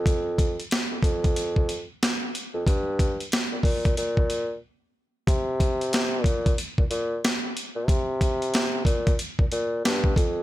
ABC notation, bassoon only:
X:1
M:4/4
L:1/16
Q:"Swing 16ths" 1/4=92
K:Gphr
V:1 name="Bassoon" clef=bass
F,,4 z F,, F,,4- F,, z4 F,, | G,,4 z B,, B,,2 B,,4 z4 | C,6 B,,2 z B,, B,,2 z3 B,, | C,6 B,,2 z B,, B,,2 G,,2 F,,2 |]